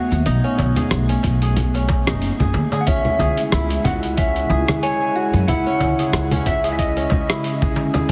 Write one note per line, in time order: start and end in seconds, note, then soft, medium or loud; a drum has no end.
0.00 2.83 A3 medium
0.00 2.83 B3 medium
0.00 0.44 C#4 medium
0.00 1.40 F#4 medium
0.00 0.65 G#4 loud
0.00 0.76 C#5 loud
0.00 5.44 E5 medium
0.12 0.21 D#2 medium
0.12 shaker medium
0.26 0.37 B1 medium
0.26 1.88 D#4 loud
0.26 open hi-hat soft
0.26 shaker medium
0.44 1.09 C#4 medium
0.44 shaker soft
0.58 0.70 B1 medium
0.58 open hi-hat soft
0.58 darbuka tek medium
0.58 darbuka dum medium
0.76 1.42 G#4 medium
0.76 open hi-hat soft
0.76 low conga medium
0.76 shaker medium
0.91 1.14 B1 medium
0.91 cross-stick medium
0.91 open hi-hat soft
0.91 darbuka ka soft
0.91 shaker medium
1.09 1.75 C#4 medium
1.09 open hi-hat soft
1.09 shaker soft
1.23 2.08 B1 medium
1.23 kick medium
1.23 open hi-hat soft
1.23 darbuka ka medium
1.42 2.40 G#4 medium
1.42 open hi-hat soft
1.42 shaker medium
1.57 kick medium
1.57 open hi-hat medium
1.57 low conga medium
1.57 shaker medium
1.74 2.87 C#4 medium
1.74 open hi-hat soft
1.74 darbuka tek soft
1.74 shaker soft
1.89 kick loud
1.89 darbuka tek medium
2.07 2.28 F#1 medium
2.07 3.59 D#4 medium
2.07 cross-stick medium
2.07 open hi-hat soft
2.07 shaker medium
2.22 open hi-hat soft
2.22 shaker medium
2.39 2.50 F#1 medium
2.39 2.72 G#4 medium
2.39 kick loud
2.39 darbuka ka soft
2.39 low conga medium
2.39 shaker soft
2.54 2.65 D#2 medium
2.54 darbuka tek medium
2.54 darbuka dum medium
2.72 3.20 G#4 medium
2.72 darbuka tek medium
2.72 darbuka dum medium
2.72 shaker medium
2.81 2.87 F#5 medium
2.87 2.98 C#2 medium
2.87 8.05 C#3 medium
2.87 8.05 G#3 medium
2.87 4.18 C#4 loud
2.87 8.05 E4 medium
2.87 3.88 E5 medium
2.87 kick loud
2.87 open hi-hat soft
2.87 shaker soft
3.05 low conga medium
3.05 shaker soft
3.19 3.30 C#2 medium
3.19 4.50 G#4 loud
3.19 open hi-hat soft
3.19 darbuka tek medium
3.19 darbuka dum medium
3.37 open hi-hat soft
3.37 shaker medium
3.52 3.75 C#2 medium
3.52 5.10 E4 medium
3.52 cross-stick medium
3.52 open hi-hat soft
3.52 darbuka ka soft
3.52 shaker medium
3.70 open hi-hat soft
3.70 shaker soft
3.84 4.43 C#2 medium
3.84 5.15 F#4 medium
3.84 3.93 F#5 medium
3.84 kick medium
3.84 open hi-hat soft
3.84 darbuka ka medium
3.84 low conga medium
4.03 open hi-hat soft
4.03 shaker medium
4.17 5.66 C#4 medium
4.17 4.79 E5 medium
4.17 kick loud
4.17 open hi-hat soft
4.17 shaker medium
4.36 open hi-hat soft
4.36 darbuka tek soft
4.36 shaker soft
4.50 4.61 C#2 loud
4.50 5.87 G#4 medium
4.68 cross-stick medium
4.68 open hi-hat soft
4.68 low conga medium
4.68 darbuka dum medium
4.68 shaker medium
4.83 5.98 C#5 loud
4.83 5.47 G#5 loud
4.83 open hi-hat soft
4.83 shaker medium
5.01 shaker soft
5.16 6.62 F#4 medium
5.33 5.43 F#2 loud
5.33 shaker medium
5.48 5.59 C#2 medium
5.48 8.07 C#4 medium
5.48 7.05 E4 loud
5.48 6.46 F#5 loud
5.48 open hi-hat soft
5.48 low conga medium
5.48 shaker soft
5.66 6.31 C#4 medium
5.66 shaker soft
5.80 5.91 C#2 medium
5.80 open hi-hat soft
5.80 darbuka tek medium
5.80 darbuka dum medium
5.99 6.64 G#4 medium
5.99 open hi-hat soft
5.99 shaker medium
6.13 6.36 C#2 medium
6.13 cross-stick medium
6.13 open hi-hat medium
6.13 shaker soft
6.31 6.96 C#4 medium
6.31 open hi-hat soft
6.31 low conga medium
6.31 shaker soft
6.46 7.04 C#2 medium
6.46 6.71 E5 medium
6.46 kick medium
6.46 open hi-hat medium
6.46 darbuka ka medium
6.64 7.61 G#4 medium
6.64 open hi-hat soft
6.64 shaker medium
6.72 6.79 E5 medium
6.79 7.73 D#5 medium
6.79 kick medium
6.79 open hi-hat medium
6.79 shaker soft
6.97 8.09 C#4 medium
6.97 open hi-hat soft
6.97 darbuka tek soft
6.97 shaker soft
7.10 kick medium
7.10 darbuka tek medium
7.10 low conga medium
7.29 8.12 E4 medium
7.29 cross-stick medium
7.29 open hi-hat soft
7.29 shaker medium
7.44 open hi-hat medium
7.44 shaker medium
7.62 7.72 C#2 medium
7.62 7.94 G#4 medium
7.62 kick medium
7.62 darbuka ka soft
7.62 shaker soft
7.76 darbuka tek medium
7.76 darbuka dum medium
7.94 8.12 G#4 medium
7.94 darbuka tek medium
7.94 darbuka dum medium
7.94 low conga medium
7.94 shaker medium
8.08 8.12 A3 medium
8.08 8.12 B3 medium
8.08 8.12 D#4 medium